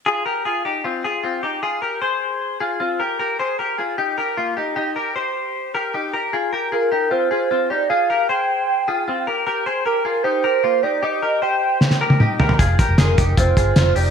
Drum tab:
HH |----------------|----------------|----------------|----------------|
SD |----------------|----------------|----------------|----------------|
T1 |----------------|----------------|----------------|----------------|
T2 |----------------|----------------|----------------|----------------|
FT |----------------|----------------|----------------|----------------|
BD |----------------|----------------|----------------|----------------|

HH |----------------|----------------|----------------|----------------|
SD |----------------|----------------|----------------|--------oo------|
T1 |----------------|----------------|----------------|-----------o----|
T2 |----------------|----------------|----------------|------------o---|
FT |----------------|----------------|----------------|--------------oo|
BD |----------------|----------------|----------------|----------------|

HH |x-x-x-x-x-x-x-o-|
SD |----o-------o---|
T1 |----------------|
T2 |----------------|
FT |----------------|
BD |o-o---o-o-o-----|